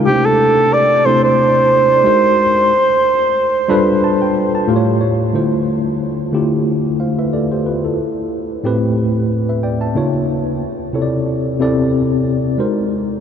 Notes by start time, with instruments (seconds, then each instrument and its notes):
0.06 tine electric piano C3 A3 D4 D#4, cor anglais G4
0.14 tine electric piano E4
0.25 cor anglais A4
0.73 cor anglais D5
1.05 tine electric piano C3 A3 D4 E4 C5, cor anglais C5
1.24 cor anglais C5
2.04 tine electric piano G#3 D#4 F#4 A#4 C5
3.68 tine electric piano G3 D4 F4 A4 B4 B5
4.04 tine electric piano A5
4.22 tine electric piano G5
4.55 tine electric piano A5
4.68 tine electric piano A2 A3 F4 G4 C5 F5
4.76 tine electric piano C#5
5.01 tine electric piano C#5
5.33 tine electric piano D3 A3 E4 F4 C5
6.32 tine electric piano D3 A3 E4 F4 G4
7.00 tine electric piano C5 F5
7.19 tine electric piano B4 E5
7.33 tine electric piano A4 D5
7.52 tine electric piano G4 C5
7.66 tine electric piano F4 B4
7.85 tine electric piano E4 A4
8.64 tine electric piano A2 A3 C4 G4 B4
9.49 tine electric piano B4 E5
9.63 tine electric piano D5 G5
9.81 tine electric piano E5 A5
9.94 tine electric piano C#3 A#3 D#4 F4 C#5
10.93 tine electric piano C3 C4 E4 A4 C#5
11.02 tine electric piano D5
11.59 tine electric piano C3 C4 E4 A4 D5
12.58 tine electric piano G#3 D#4 F#4 A#4 C5